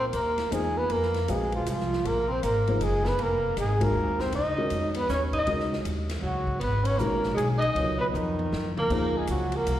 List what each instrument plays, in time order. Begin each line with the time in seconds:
Already playing: upright bass A#2
0.12 upright bass D#2, alto saxophone A#3, trumpet A#4, hi-hat pedal, ride
0.38 snare, ride
0.51 upright bass E2, alto saxophone G#3, grand piano A#3 D#4 F4 G#4 C5, trumpet G#4, hi-hat pedal, ride
0.77 alto saxophone B3, trumpet B4
0.90 upright bass F2, alto saxophone A#3, trumpet A#4, ride
1.03 snare
1.14 snare, ride
1.28 upright bass A#1, grand piano G#3 C4 F#4 B4 F5, alto saxophone G#3, trumpet G#4, hi-hat pedal, ride
1.52 alto saxophone F3, trumpet F4, ride
1.66 upright bass C2, alto saxophone F3, trumpet F4, hi-hat pedal, ride
1.80 snare
1.93 snare
2.04 upright bass A#1, alto saxophone A#3, trumpet A#4, ride
2.28 alto saxophone C4, trumpet C5
2.42 upright bass G#1, alto saxophone A#3, trumpet A#4, hi-hat pedal, ride
2.67 grand piano F3 A#3 D#4 G#4 C5, ride
2.79 upright bass F#1, alto saxophone G#3, hi-hat pedal, ride
2.84 trumpet G#4
3.04 alto saxophone B3, snare
3.09 trumpet B4
3.19 upright bass F1, alto saxophone A#3, trumpet A#4, ride
3.57 upright bass G#1, alto saxophone G#3, trumpet G#4, hi-hat pedal, ride
3.80 grand piano D#3 G#3 C4 F#4 A#4, alto saxophone A#3, trumpet A#4, kick, ride
3.95 upright bass D#2
4.19 alto saxophone C4, trumpet C5, snare
4.32 upright bass C#2, alto saxophone D#4, trumpet D#5, ride
4.57 grand piano D#3 G#3 C#4 F#4 A#4
4.70 upright bass F2, hi-hat pedal, ride
4.94 alto saxophone B3, ride
4.99 trumpet B4
5.09 upright bass D#2, alto saxophone C#4, snare, hi-hat pedal
5.14 trumpet C#5
5.33 alto saxophone D#4, kick, ride
5.38 trumpet D#5
5.47 upright bass C#2, grand piano D#3 G#3 C#4 F#4 A#4, ride
5.60 snare
5.73 snare
5.85 upright bass D#2, hi-hat pedal, ride
6.09 snare, ride
6.22 upright bass C#2, alto saxophone F#3, trumpet F#4
6.47 kick
6.59 upright bass G#1, alto saxophone B3, trumpet B4, ride
6.83 alto saxophone C#4, trumpet C#5, ride
6.97 upright bass A#1, grand piano D#3 G#3 C#4 F#4 A#4, alto saxophone A#3, trumpet A#4, hi-hat pedal
7.24 snare
7.34 upright bass B1, alto saxophone G#3, trumpet G#4
7.38 hi-hat pedal, ride
7.58 alto saxophone D#4, trumpet D#5
7.62 ride
7.75 upright bass C#2, grand piano F#3 B3 F4 A#4 C#5, ride
7.98 alto saxophone B3, trumpet B4
8.13 upright bass F2, alto saxophone D#3, trumpet D#4, hi-hat pedal, high tom
8.39 high tom
8.52 upright bass F#2, snare
8.77 alto saxophone A#3, trumpet A#4, mid tom
8.90 upright bass D#2, grand piano F3 A#3 D#4 G#4 C5, kick, crash
9.17 alto saxophone G#3, trumpet G#4
9.27 upright bass C#2, alto saxophone F#3, trumpet F#4, hi-hat pedal, ride
9.52 alto saxophone A#3, ride
9.57 trumpet A#4
9.67 upright bass C2, hi-hat pedal, ride